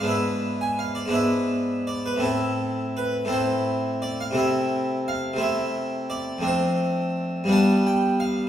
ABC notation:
X:1
M:6/8
L:1/16
Q:3/8=57
K:Am
V:1 name="Harpsichord"
e3 ^g f d e4 d B | A4 B2 c4 d f | e4 f2 e4 d2 | [K:Ddor] c6 a2 g2 f2 |]
V:2 name="Harpsichord"
[^G,,B,DE]6 [G,,B,DE]6 | [A,,A,CE]6 [A,,A,CE]6 | [C,A,CE]6 [C,A,CE]6 | [K:Ddor] [F,,A,CD]6 [G,,G,B,D]6 |]